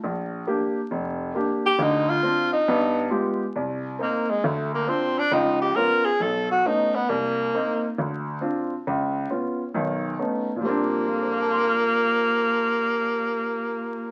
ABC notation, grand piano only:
X:1
M:4/4
L:1/8
Q:"Swing" 1/4=136
K:Bb
V:1 name="Grand piano"
B,,,2 [B,DG] z F,,,2 [B,DG] z | [D,,D,]2 [CDF] z [G,,=B,]2 [_A,B,FG] z | C,,2 [B,CE] z D,,2 [CDF] z | [_D,,F,]2 [_C_DF] z =B,,,2 [A,=B,^C^D] z |
C,,2 [B,CE] z D,,2 [CDF] z | _D,,2 [_C_DF] z [=B,,,^D,]2 [A,=B,^C^D] z | z2 [FAcfac'f']6- | [FAcfac'f']8 |]
V:2 name="Grand piano" clef=bass
z8 | z8 | z8 | z8 |
z8 | z8 | [B,,F,G,CD]8- | [B,,F,G,CD]8 |]